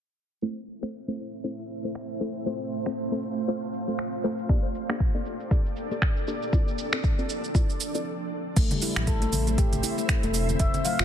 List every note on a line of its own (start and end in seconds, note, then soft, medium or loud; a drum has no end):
0.42 0.58 A3 medium
0.42 4.45 A3 medium
0.42 0.58 C4 medium
0.42 4.45 C4 medium
0.42 0.58 E4 medium
0.42 2.44 E4 medium
0.42 0.58 A4 medium
0.42 0.58 C5 loud
0.42 4.45 C5 medium
0.42 2.44 E5 medium
0.42 shaker soft
0.68 shaker medium
0.82 0.90 A3 medium
0.82 0.90 C4 medium
0.82 0.90 E4 medium
0.82 0.90 A4 medium
0.82 0.90 C5 medium
0.82 finger snap medium
1.08 1.42 A3 medium
1.08 1.42 C4 medium
1.08 1.42 E4 medium
1.08 1.42 A4 medium
1.08 1.42 C5 medium
1.19 shaker medium
1.34 shaker soft
1.44 1.54 A3 medium
1.44 1.54 C4 medium
1.44 1.54 E4 medium
1.44 1.54 A4 medium
1.44 1.54 C5 medium
1.44 shaker soft
1.59 shaker soft
1.70 shaker medium
1.84 1.91 A3 medium
1.84 1.91 C4 medium
1.84 1.92 E4 medium
1.84 1.92 A4 medium
1.84 1.91 C5 medium
1.84 shaker soft
1.95 finger snap medium
2.10 shaker soft
2.21 2.30 A3 medium
2.21 2.30 C4 medium
2.21 2.30 E4 medium
2.21 2.30 A4 medium
2.21 2.30 C5 loud
2.21 shaker medium
2.36 shaker soft
2.46 2.61 A3 medium
2.46 2.61 C4 medium
2.46 2.61 F4 medium
2.46 4.47 F4 medium
2.46 2.61 A4 medium
2.46 2.61 C5 loud
2.46 4.47 F5 medium
2.46 shaker soft
2.61 shaker soft
2.72 shaker medium
2.86 2.93 A3 medium
2.86 2.93 C4 medium
2.86 2.93 F4 medium
2.86 2.93 A4 medium
2.86 2.93 C5 medium
2.86 finger snap medium
2.97 shaker soft
3.12 3.45 A3 medium
3.12 3.45 C4 medium
3.12 3.45 F4 medium
3.12 3.45 A4 medium
3.12 3.45 C5 medium
3.12 shaker soft
3.23 shaker medium
3.37 shaker soft
3.48 3.57 A3 medium
3.48 3.58 C4 medium
3.48 3.57 F4 medium
3.48 3.57 A4 medium
3.48 3.57 C5 medium
3.48 shaker soft
3.63 shaker soft
3.74 shaker medium
3.88 3.95 A3 medium
3.88 3.95 C4 medium
3.88 3.95 F4 medium
3.88 3.95 A4 medium
3.88 3.95 C5 medium
3.88 shaker soft
3.99 finger snap medium
3.99 shaker medium
4.13 shaker soft
4.24 4.34 A3 medium
4.24 4.34 C4 medium
4.24 4.34 F4 medium
4.24 4.34 A4 medium
4.24 4.34 C5 loud
4.24 shaker medium
4.39 shaker soft
4.49 6.51 A#3 medium
4.49 4.65 A#3 medium
4.49 6.51 D4 medium
4.49 4.65 D4 medium
4.49 6.51 G4 medium
4.49 4.65 G4 medium
4.49 4.65 A4 medium
4.49 6.51 A4 medium
4.49 8.02 D5 medium
4.49 4.65 D5 loud
4.49 kick loud
4.49 shaker medium
4.64 shaker soft
4.75 shaker medium
4.89 4.96 A#3 medium
4.89 4.97 D4 medium
4.89 4.97 G4 medium
4.89 4.96 A4 medium
4.89 4.96 D5 medium
4.89 finger snap medium
4.89 shaker soft
5.00 kick loud
5.00 shaker medium
5.14 5.48 A#3 medium
5.14 5.48 D4 medium
5.14 5.48 G4 medium
5.14 5.48 A4 medium
5.14 5.48 D5 medium
5.14 shaker soft
5.26 shaker medium
5.40 shaker soft
5.51 5.61 A#3 medium
5.51 5.61 D4 medium
5.51 5.61 G4 medium
5.51 5.61 A4 medium
5.51 5.61 D5 medium
5.51 kick loud
5.51 shaker medium
5.66 shaker soft
5.76 shaker medium
5.91 5.98 A#3 medium
5.91 5.98 D4 medium
5.91 5.98 G4 medium
5.91 5.98 A4 medium
5.91 5.98 D5 medium
5.91 shaker soft
6.02 finger snap medium
6.02 kick loud
6.02 shaker medium
6.17 shaker soft
6.27 6.37 A#3 medium
6.27 6.37 D4 medium
6.27 6.37 G4 medium
6.27 6.37 A4 medium
6.27 6.37 D5 loud
6.27 shaker medium
6.42 shaker soft
6.53 8.04 F3 medium
6.53 8.04 C4 medium
6.53 6.68 C4 medium
6.53 8.04 D4 medium
6.53 6.68 E4 medium
6.53 6.68 F4 medium
6.53 8.04 A4 medium
6.53 6.68 A4 medium
6.53 6.68 D5 loud
6.53 kick loud
6.53 shaker medium
6.68 shaker soft
6.78 shaker medium
6.93 7.00 C4 medium
6.93 7.00 E4 medium
6.93 7.00 F4 medium
6.93 7.00 A4 medium
6.93 7.00 D5 medium
6.93 finger snap medium
6.93 shaker soft
7.04 kick loud
7.04 shaker medium
7.18 7.52 C4 medium
7.18 7.52 E4 medium
7.18 7.52 F4 medium
7.18 7.52 A4 medium
7.18 7.52 D5 medium
7.18 shaker soft
7.29 shaker medium
7.44 shaker soft
7.54 7.64 C4 medium
7.54 7.64 E4 medium
7.54 7.64 F4 medium
7.54 7.64 A4 medium
7.54 7.64 D5 medium
7.54 kick loud
7.54 shaker medium
7.70 shaker soft
7.80 shaker medium
7.94 8.02 C4 medium
7.94 8.02 E4 medium
7.94 8.02 F4 medium
7.94 8.02 A4 medium
7.94 8.02 D5 medium
7.94 shaker soft
8.56 8.67 A1 medium
8.56 10.58 A3 medium
8.56 8.70 A3 medium
8.56 11.05 C4 medium
8.56 10.58 E4 medium
8.56 10.58 C5 medium
8.56 10.58 E5 medium
8.56 kick loud
8.56 closed hi-hat medium
8.56 crash medium
8.56 shaker soft
8.71 8.81 G3 medium
8.71 closed hi-hat soft
8.71 low conga loud
8.71 shaker soft
8.81 8.90 E4 medium
8.81 open hi-hat medium
8.81 muted conga medium
8.81 high conga medium
8.81 shaker medium
8.96 9.28 A1 medium
8.96 finger snap medium
8.96 high conga medium
8.96 shaker soft
9.07 9.20 A4 medium
9.07 kick loud
9.07 closed hi-hat medium
9.07 shaker soft
9.22 9.32 A3 medium
9.22 closed hi-hat soft
9.22 shaker soft
9.33 9.67 A1 medium
9.33 open hi-hat medium
9.33 muted conga soft
9.33 low conga loud
9.33 shaker medium
9.47 9.57 A3 medium
9.47 closed hi-hat soft
9.47 high conga medium
9.47 shaker soft
9.58 9.71 G4 medium
9.58 kick loud
9.58 closed hi-hat medium
9.58 shaker soft
9.72 9.81 A1 loud
9.72 closed hi-hat soft
9.72 muted conga medium
9.72 low conga loud
9.72 shaker soft
9.83 9.91 E4 medium
9.83 open hi-hat medium
9.83 shaker medium
9.98 10.04 A3 medium
9.98 shaker soft
10.09 finger snap medium
10.09 kick loud
10.09 closed hi-hat medium
10.09 shaker medium
10.23 10.55 E1 medium
10.23 10.33 A3 medium
10.23 closed hi-hat soft
10.23 shaker soft
10.34 10.48 A3 medium
10.34 open hi-hat medium
10.34 shaker medium
10.49 closed hi-hat soft
10.49 muted conga medium
10.49 low conga medium
10.49 shaker soft
10.59 10.71 F1 medium
10.59 11.05 F3 medium
10.59 11.05 A3 medium
10.59 11.05 C5 medium
10.59 10.73 E5 medium
10.59 kick loud
10.59 closed hi-hat medium
10.59 high conga medium
10.59 shaker medium
10.74 closed hi-hat soft
10.74 low conga loud
10.74 shaker soft
10.85 10.98 F5 medium
10.85 open hi-hat medium
10.85 muted conga soft
10.85 high conga medium
10.85 shaker medium
10.99 11.05 F1 medium
10.99 11.05 F4 medium
10.99 finger snap medium
10.99 high conga medium
10.99 shaker soft